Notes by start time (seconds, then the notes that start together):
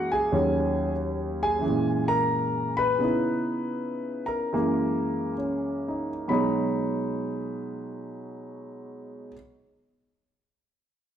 Already playing: F#2 E3 G#3 A#3
0.12 G#4 G#5
0.32 D#2 D#3 F#3 C#4
1.43 G#4 G#5
1.58 F#2 E3
1.65 A#2 G#3
2.08 A#4 A#5
2.77 B4 B5
2.98 C#3 B3 D#4
3.04 E4
4.26 A#4 A#5
4.52 F#2 E3 G#3 A#3
5.38 C#4
5.88 D#4
6.28 B2 F#3 G#3 D#4 B5